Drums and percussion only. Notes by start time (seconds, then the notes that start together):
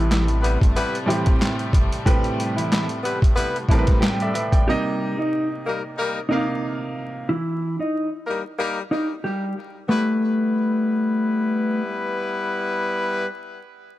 0.12 snare, clap, closed hi-hat
0.28 closed hi-hat
0.44 closed hi-hat
0.61 kick, closed hi-hat
0.76 closed hi-hat
0.95 closed hi-hat
1.10 closed hi-hat
1.26 kick, closed hi-hat
1.42 snare, clap, closed hi-hat
1.59 closed hi-hat
1.73 kick, closed hi-hat
1.93 closed hi-hat
2.06 kick, closed hi-hat
2.24 closed hi-hat
2.40 closed hi-hat
2.58 closed hi-hat
2.72 snare, clap, closed hi-hat
2.89 closed hi-hat
3.05 closed hi-hat
3.22 kick, closed hi-hat
3.38 closed hi-hat
3.56 closed hi-hat
3.69 kick, closed hi-hat
3.87 kick, snare, closed hi-hat
4.03 snare, clap, closed hi-hat
4.20 closed hi-hat
4.35 closed hi-hat
4.52 kick, closed hi-hat